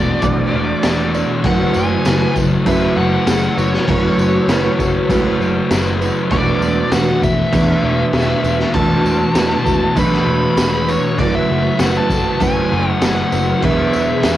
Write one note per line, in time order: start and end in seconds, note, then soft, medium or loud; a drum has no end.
0.00 0.12 E1 medium
0.00 0.21 E2 medium
0.00 0.23 B2 medium
0.00 0.22 E3 medium
0.00 0.25 E3 medium
0.00 0.23 A3 medium
0.00 0.23 D4 medium
0.00 0.24 F#4 medium
0.00 0.87 F#4 medium
0.00 0.23 A4 medium
0.00 0.24 D5 medium
0.00 1.12 D5 medium
0.22 0.42 B1 medium
0.22 0.82 E2 loud
0.22 0.55 B2 loud
0.22 1.44 E3 loud
0.22 0.52 E3 loud
0.22 1.45 A3 loud
0.22 1.16 D4 loud
0.22 1.16 F#4 loud
0.22 2.36 B4 medium
0.22 1.13 D5 loud
0.22 kick loud
0.22 tambourine medium
0.22 crash medium
0.52 0.73 E1 medium
0.52 0.84 B2 medium
0.52 0.86 E3 medium
0.83 1.23 E1 medium
0.83 1.43 E2 medium
0.83 1.44 B2 medium
0.83 1.47 E3 medium
0.83 1.14 G#4 medium
0.83 snare loud
0.83 tambourine medium
0.83 crash medium
1.14 1.45 D4 medium
1.14 1.46 F#4 medium
1.14 1.43 D5 medium
1.14 tambourine medium
1.44 1.64 F#1 medium
1.44 2.05 F#2 medium
1.44 2.06 C#3 loud
1.44 2.65 F#3 loud
1.44 2.08 F#3 medium
1.44 2.05 A3 loud
1.44 2.06 E4 loud
1.44 2.07 F#4 loud
1.44 2.08 B4 loud
1.44 1.74 F#5 medium
1.44 kick loud
1.44 tambourine soft
1.44 crash medium
1.74 1.95 F#1 medium
1.74 2.33 G#5 loud
1.74 tambourine medium
2.05 2.26 F#1 loud
2.05 2.66 F#2 medium
2.05 2.67 C#3 medium
2.05 2.70 F#3 medium
2.05 2.66 A3 medium
2.05 2.67 E4 medium
2.05 2.67 F#4 medium
2.05 2.68 B4 medium
2.05 snare loud
2.05 tambourine loud
2.05 crash medium
2.36 2.56 F#1 medium
2.36 2.67 A4 medium
2.36 kick medium
2.36 tambourine medium
2.65 2.86 F#2 medium
2.65 3.27 F#2 medium
2.65 2.99 C#3 loud
2.65 3.87 F#3 loud
2.65 3.88 A3 loud
2.65 3.59 E4 loud
2.65 3.58 F#4 loud
2.65 3.57 B4 loud
2.65 2.97 E5 loud
2.65 kick loud
2.65 tambourine medium
2.65 crash medium
2.70 2.96 F#3 loud
2.96 3.16 F#1 medium
2.96 3.28 C#3 medium
2.96 3.31 F#3 medium
2.96 3.60 F#5 loud
3.27 3.47 F#1 medium
3.27 3.87 F#2 medium
3.27 3.88 C#3 medium
3.27 3.58 G#4 medium
3.27 snare loud
3.27 tambourine medium
3.27 crash medium
3.31 3.91 F#3 medium
3.57 3.77 F#1 loud
3.57 3.88 E4 medium
3.57 3.89 F#4 medium
3.57 3.89 B4 medium
3.57 5.36 C#5 medium
3.57 tambourine medium
3.73 snare soft
3.87 4.08 F#1 medium
3.87 4.48 F#2 medium
3.87 4.50 C#3 medium
3.87 5.09 F#3 medium
3.87 4.51 F#3 loud
3.87 4.49 A3 loud
3.87 4.50 E4 medium
3.87 4.51 F#4 loud
3.87 4.51 B4 loud
3.87 kick loud
3.87 tambourine soft
3.87 crash medium
4.18 4.38 F#1 medium
4.18 tambourine medium
4.48 4.68 F#1 medium
4.48 5.08 F#2 medium
4.48 5.10 C#3 medium
4.48 5.12 F#3 medium
4.48 5.09 A3 medium
4.48 5.10 E4 medium
4.48 5.11 F#4 medium
4.48 5.11 B4 medium
4.48 snare loud
4.48 tambourine medium
4.48 crash medium
4.79 4.99 F#1 medium
4.79 5.10 A4 medium
4.79 kick medium
4.79 tambourine medium
5.09 5.29 C#2 medium
5.09 5.70 F#2 loud
5.09 5.43 C#3 loud
5.09 6.30 F#3 medium
5.09 5.40 F#3 loud
5.09 6.31 A3 medium
5.09 6.03 E4 loud
5.09 6.02 F#4 loud
5.09 6.00 B4 loud
5.09 kick loud
5.09 tambourine medium
5.09 crash medium
5.40 5.60 F#1 medium
5.40 5.71 C#3 medium
5.40 5.74 F#3 medium
5.40 tambourine soft
5.71 6.10 F#1 medium
5.71 6.30 F#2 medium
5.71 6.31 C#3 medium
5.71 6.34 F#3 medium
5.71 6.01 G#4 medium
5.71 snare loud
5.71 tambourine loud
5.71 crash medium
6.01 6.32 E4 medium
6.01 6.32 F#4 medium
6.01 6.33 B4 medium
6.01 tambourine medium
6.31 6.51 E1 medium
6.31 6.91 E2 medium
6.31 6.92 B2 medium
6.31 7.51 E3 loud
6.31 6.95 E3 medium
6.31 6.91 A3 medium
6.31 6.92 D4 loud
6.31 6.93 F#4 loud
6.31 6.94 B4 loud
6.31 6.94 D5 medium
6.31 kick loud
6.31 tambourine soft
6.31 crash medium
6.61 6.81 E1 medium
6.61 tambourine medium
6.92 7.11 E1 medium
6.92 7.51 E2 medium
6.92 7.53 B2 medium
6.92 7.55 E3 medium
6.92 7.52 A3 medium
6.92 7.52 D4 medium
6.92 7.53 F#4 medium
6.92 7.54 B4 medium
6.92 7.23 F#5 medium
6.92 snare loud
6.92 tambourine loud
6.92 crash medium
7.22 7.42 E1 medium
7.22 7.53 A4 medium
7.22 8.80 E5 medium
7.22 kick medium
7.22 tambourine medium
7.52 8.12 E2 loud
7.52 7.72 E2 medium
7.52 7.85 B2 loud
7.52 8.73 E3 medium
7.52 7.82 E3 loud
7.52 8.74 A3 loud
7.52 8.45 D4 loud
7.52 8.44 F#4 medium
7.52 8.43 B4 loud
7.52 kick loud
7.52 tambourine medium
7.52 crash medium
7.83 8.03 E1 medium
7.83 8.14 B2 medium
7.83 8.16 E3 medium
8.13 8.33 E1 medium
8.13 8.74 E2 medium
8.13 8.76 B2 medium
8.13 8.78 E3 medium
8.13 8.44 G#4 medium
8.13 snare loud
8.13 tambourine medium
8.13 crash medium
8.43 8.64 E1 medium
8.43 8.74 D4 medium
8.43 8.75 F#4 medium
8.43 8.75 B4 medium
8.43 tambourine medium
8.59 snare soft
8.73 8.94 E1 medium
8.73 9.35 E2 medium
8.73 9.36 B2 medium
8.73 9.96 E3 medium
8.73 9.34 A3 loud
8.73 9.34 D4 loud
8.73 9.36 F#4 loud
8.73 9.37 B4 loud
8.73 9.99 A5 loud
8.73 kick loud
8.73 tambourine soft
8.73 crash medium
8.78 9.39 E3 medium
9.05 9.24 E1 medium
9.05 tambourine medium
9.34 9.55 E1 medium
9.34 9.95 E2 medium
9.34 9.97 B2 medium
9.34 9.96 A3 medium
9.34 9.96 D4 medium
9.34 9.97 F#4 medium
9.34 9.98 B4 medium
9.34 snare loud
9.34 tambourine medium
9.34 crash medium
9.39 10.00 E3 medium
9.66 9.85 E1 medium
9.66 9.97 A4 medium
9.66 kick medium
9.66 tambourine medium
9.96 10.16 B1 medium
9.96 10.55 E2 medium
9.96 10.29 B2 loud
9.96 11.18 E3 medium
9.96 10.26 E3 loud
9.96 11.17 A3 medium
9.96 10.89 D4 loud
9.96 10.87 F#4 loud
9.96 10.87 B4 loud
9.96 10.92 B5 loud
9.96 kick loud
9.96 tambourine medium
9.96 crash medium
10.12 snare soft
10.26 10.46 E1 medium
10.26 10.58 B2 medium
10.26 10.60 E3 medium
10.57 10.96 E1 medium
10.57 11.16 E2 medium
10.57 11.17 B2 medium
10.57 11.21 E3 medium
10.57 10.88 G#4 medium
10.57 snare loud
10.57 tambourine loud
10.57 crash medium
10.87 11.18 D4 medium
10.87 11.17 F#4 medium
10.87 11.20 B4 medium
10.87 11.19 C#5 medium
10.87 tambourine medium
11.18 11.38 F#1 loud
11.18 11.78 F#2 medium
11.18 11.80 C#3 loud
11.18 12.10 F#3 loud
11.18 11.81 F#3 medium
11.18 11.77 A3 loud
11.18 11.79 E4 loud
11.18 11.79 F#4 loud
11.18 11.81 B4 loud
11.18 11.35 D5 medium
11.18 kick loud
11.18 tambourine soft
11.18 crash medium
11.35 11.80 E5 loud
11.50 11.69 F#1 medium
11.78 11.99 F#1 loud
11.78 12.40 F#2 medium
11.78 12.42 C#3 medium
11.78 12.39 A3 medium
11.78 12.41 E4 medium
11.78 12.40 F#4 medium
11.78 12.42 B4 medium
11.78 11.96 F#5 loud
11.78 snare loud
11.78 tambourine loud
11.78 crash medium
11.83 12.43 F#3 medium
11.97 12.43 A5 loud
12.09 12.29 F#1 medium
12.09 12.42 A4 medium
12.09 kick medium
12.09 tambourine medium
12.40 12.60 F#2 medium
12.40 13.00 F#2 medium
12.40 12.72 C#3 loud
12.40 13.61 F#3 loud
12.40 13.61 A3 loud
12.40 13.34 E4 loud
12.40 13.32 F#4 loud
12.40 13.32 B4 loud
12.40 12.90 G#5 loud
12.40 kick loud
12.40 tambourine medium
12.40 crash medium
12.44 12.69 F#3 loud
12.70 12.91 F#1 loud
12.70 13.02 C#3 medium
12.70 13.03 F#3 medium
12.90 13.05 F#5 loud
13.01 13.22 F#1 medium
13.01 13.61 F#2 medium
13.01 13.62 C#3 medium
13.01 13.62 F#3 medium
13.01 13.33 G#4 medium
13.01 13.64 F#5 medium
13.01 snare loud
13.01 tambourine loud
13.01 crash medium
13.32 13.52 F#1 medium
13.32 13.63 E4 medium
13.32 13.62 F#4 medium
13.32 13.64 B4 medium
13.32 tambourine medium
13.61 13.82 E1 medium
13.61 14.22 E2 medium
13.61 14.24 B2 medium
13.61 14.37 E3 loud
13.61 14.26 E3 medium
13.61 14.22 B3 loud
13.61 14.23 D4 loud
13.61 14.24 G#4 loud
13.61 14.25 B4 loud
13.61 14.37 E5 medium
13.61 kick loud
13.61 tambourine soft
13.61 crash medium
13.93 14.13 E1 medium
13.93 tambourine medium
14.23 14.37 E1 medium
14.23 14.37 E2 medium
14.23 14.37 B2 medium
14.23 14.37 E3 medium
14.23 14.37 B3 medium
14.23 14.37 D4 medium
14.23 14.37 G#4 medium
14.23 14.37 B4 medium
14.23 snare loud
14.23 tambourine loud
14.23 crash medium